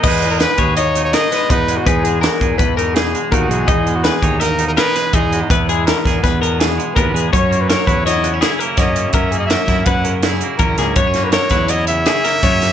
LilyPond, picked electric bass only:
\new Staff \with { instrumentName = "Picked electric bass" } { \clef bass \time 5/4 \key e \lydian \tempo 4 = 165 e,4. dis,2 r8 e,4 | e,4. e,8 e,2 dis,8 b,,8 | e,4. dis,2 r8 e,4 | e,4. e,8 e,2 dis,8 e,8 |
fis,4. e,2 r8 fis,4 | fis,4. fis,8 fis,2 e,8 cis,8 | fis,4. e,2 r8 fis,4 | }